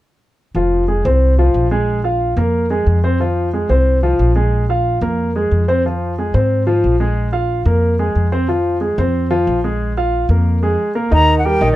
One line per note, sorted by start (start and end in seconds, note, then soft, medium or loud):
0.55 1.01 F1 medium
0.55 0.82 F3 medium
0.55 0.83 F4 medium
0.88 1.02 G#3 soft
0.88 1.02 G#4 medium
1.05 1.51 C2 medium
1.05 1.32 C4 medium
1.05 1.33 C5 medium
1.38 1.66 F3 medium
1.38 1.66 F4 medium
1.54 2.32 A#1 medium
1.71 1.98 G#3 medium
1.71 1.99 G#4 medium
2.04 2.31 F4 medium
2.04 2.32 F5 medium
2.37 2.83 F2 medium
2.37 2.65 A#3 medium
2.37 2.65 A#4 medium
2.70 2.98 G#3 medium
2.70 2.98 G#4 medium
2.87 3.64 F2 medium
3.04 3.17 C4 medium
3.04 3.18 C5 medium
3.20 3.47 F3 medium
3.20 3.48 F4 medium
3.53 3.67 G#3 medium
3.53 3.67 G#4 medium
3.69 4.16 C2 medium
3.69 3.97 C4 medium
3.69 3.97 C5 medium
4.03 4.30 F3 medium
4.03 4.30 F4 medium
4.19 4.97 A#1 medium
4.36 4.63 G#3 medium
4.36 4.63 G#4 medium
4.69 4.96 F4 medium
4.69 4.97 F5 medium
5.01 5.48 F2 medium
5.01 5.29 A#3 medium
5.01 5.29 A#4 medium
5.36 5.63 G#3 medium
5.36 5.63 G#4 medium
5.51 6.29 F2 medium
5.68 5.82 C4 medium
5.68 5.82 C5 medium
5.86 6.12 F3 medium
5.86 6.13 F4 medium
6.18 6.32 G#3 soft
6.18 6.32 G#4 medium
6.34 6.80 G#2 medium
6.34 6.62 C4 medium
6.34 6.62 C5 medium
6.67 6.94 F3 medium
6.67 6.94 F4 medium
6.84 7.61 A#1 medium
7.00 7.27 G#3 medium
7.00 7.28 G#4 medium
7.32 7.60 F4 medium
7.32 7.60 F5 medium
7.65 8.12 F2 medium
7.65 7.93 A#3 medium
7.65 7.94 A#4 medium
7.99 8.26 G#3 medium
7.99 8.27 G#4 medium
8.15 8.93 F2 medium
8.32 8.46 C4 medium
8.32 8.46 C5 medium
8.48 8.76 F3 medium
8.48 8.76 F4 medium
8.81 8.95 G#3 medium
8.81 8.95 G#4 medium
8.98 9.44 F2 medium
8.98 9.25 C4 medium
8.98 9.26 C5 medium
9.31 9.58 F3 medium
9.31 9.58 F4 medium
9.47 10.24 A#1 medium
9.64 9.91 G#3 medium
9.64 9.91 G#4 medium
9.97 10.24 F4 medium
9.97 10.24 F5 medium
10.29 10.75 F2 medium
10.29 10.57 A#3 medium
10.29 10.57 A#4 medium
10.63 10.90 G#3 medium
10.63 10.90 G#4 medium
10.95 11.09 A#3 medium
10.95 11.09 A#4 medium
11.11 11.58 D#2 medium
11.11 11.39 D#3 medium
11.11 11.39 D#4 medium
11.11 11.39 D#5 medium
11.11 11.37 A#5 loud
11.39 11.46 F#5 medium
11.45 11.59 G3 medium
11.45 11.59 G4 medium
11.45 11.59 A#4 medium
11.45 11.71 G5 medium
11.61 11.76 A#1 medium
11.61 11.76 D#3 medium
11.61 11.76 D#4 medium
11.61 11.76 D#5 medium
11.73 11.76 D5 medium